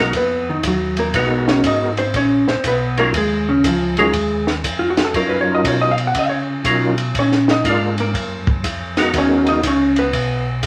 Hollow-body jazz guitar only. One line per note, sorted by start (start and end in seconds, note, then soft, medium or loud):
0.00 0.15 A#3 medium
0.00 0.15 A#4 medium
0.17 0.48 B3 medium
0.17 0.48 B4 loud
0.49 0.65 D#3 medium
0.49 0.65 D#4 medium
0.67 0.98 F#3 medium
0.67 0.98 F#4 medium
0.99 1.15 A#3 medium
0.99 1.15 A#4 medium
1.16 1.48 B3 medium
1.16 1.48 B4 medium
1.49 1.65 C#4 medium
1.49 1.65 C#5 medium
1.67 1.98 D#4 medium
1.67 1.98 D#5 loud
1.98 2.15 C4 medium
1.98 2.14 C5 medium
2.16 2.48 C#4 medium
2.16 2.48 C#5 loud
2.48 2.65 C4 medium
2.48 2.64 C5 medium
2.68 2.99 B3 medium
2.68 2.98 B4 medium
2.99 3.15 A#3 medium
2.99 3.15 A#4 loud
3.17 3.48 G#3 medium
3.17 3.48 G#4 medium
3.49 3.65 C#3 medium
3.49 3.64 C#4 medium
3.66 3.98 F3 medium
3.66 3.98 F4 medium
3.98 4.45 G#3 medium
3.98 4.45 G#4 medium
4.79 4.90 F4 medium
4.90 5.05 F#4 medium
5.05 5.13 A4 medium
5.17 5.29 A#4 medium
5.29 5.40 B4 medium
5.41 5.52 C#5 loud
5.55 5.63 D#5 loud
5.68 5.81 C#5 medium
5.81 5.97 D#5 medium
5.91 6.03 F5 loud
6.07 6.15 F#5 loud
6.19 6.33 F5 medium
6.29 6.40 C#5 medium
7.19 7.49 C#4 medium
7.19 7.49 C#5 medium
7.51 7.66 D#4 medium
7.51 7.66 D#5 loud
7.69 7.99 D4 medium
7.69 7.99 D5 medium
8.00 8.46 A#3 medium
8.00 8.45 A#4 medium
9.18 9.48 C#4 medium
9.18 9.48 C#5 medium
9.49 9.64 D#4 medium
9.49 9.64 D#5 medium
9.67 9.98 C#4 medium
9.67 9.98 C#5 medium
9.99 10.45 B3 medium
9.99 10.45 B4 medium